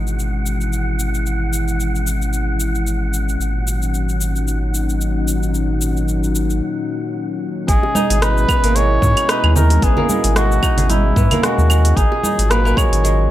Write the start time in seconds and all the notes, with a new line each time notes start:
Already playing: G#1 B2 E3 G#3 B3 C#4 D#4 E4 F#4 F#5
0.07 cabasa
0.19 cabasa
0.46 cabasa
0.61 cabasa
0.73 cabasa
1.00 cabasa
1.14 cabasa
1.26 cabasa
1.53 cabasa
1.68 cabasa
1.80 cabasa
1.95 cabasa
2.07 cabasa
2.22 cabasa
2.33 cabasa
2.60 cabasa
2.75 cabasa
2.87 cabasa
3.14 cabasa
3.29 cabasa
3.39 G#1 A#2, cabasa
3.51 F#3
3.60 D#3
3.67 cabasa
3.82 cabasa
3.94 cabasa
4.09 cabasa
4.21 cabasa
4.34 D#4, cabasa
4.48 cabasa
4.74 cabasa
4.89 cabasa
5.01 cabasa
5.28 cabasa
5.43 cabasa
5.54 cabasa
5.81 cabasa
5.97 cabasa
6.08 cabasa
6.24 cabasa
6.35 cabasa
6.50 cabasa
7.68 G#1 B2 G#3 G#4, kick, open hi-hat, cabasa
7.83 G#3, high bongo
7.95 D#4 E4, high conga, cabasa
8.10 G#1 G#4, open hi-hat, cabasa
8.22 D#4 B4, cross-stick, open hi-hat, cabasa
8.38 cabasa
8.49 B3, kick, cabasa, claves
8.63 G#1 A#3, open hi-hat, cabasa
8.75 G#3 C#5, open hi-hat, cabasa
9.02 G#2 G#3, kick, low conga, cabasa
9.17 open hi-hat, high bongo, cabasa, claves
9.29 D#4 B4, cross-stick, open hi-hat, cabasa
9.43 D#2 G#4, high conga, claves
9.56 D#4 A#4, low conga, cabasa
9.70 open hi-hat, high bongo, high conga, cabasa
9.82 G#1 B3 G#4, kick, open hi-hat, cabasa
9.97 A#3, high bongo, low conga
10.09 G#3, high conga, cabasa
10.24 G#1, open hi-hat, cabasa
10.36 G#3 F#4, cross-stick, open hi-hat, cabasa
10.52 cabasa
10.63 D#4, kick, cabasa, claves
10.77 G#1 G#4, open hi-hat, low conga, cabasa
10.90 D#4 E4, open hi-hat, high conga, cabasa
11.16 G#2 B3, kick, high conga, cabasa
11.31 A#3, open hi-hat, high conga, low conga, cabasa, claves
11.43 G#3 F#4, cross-stick, open hi-hat, cabasa
11.58 D#2, high conga, cabasa
11.70 G#3, cabasa, claves
11.85 open hi-hat, cabasa
11.97 G#1 A#2 D#4 G#4, kick, open hi-hat, cabasa
12.12 F#4 G#4, high bongo
12.18 D#3 F#3
12.23 D#4, high conga, cabasa
12.38 G#1, open hi-hat, cabasa
12.50 A#3 B4, cross-stick, open hi-hat, cabasa
12.65 A#3, cabasa
12.77 G#3 C#5, kick, cabasa, claves
12.92 G#1, open hi-hat, cabasa
13.04 G#3, open hi-hat, cabasa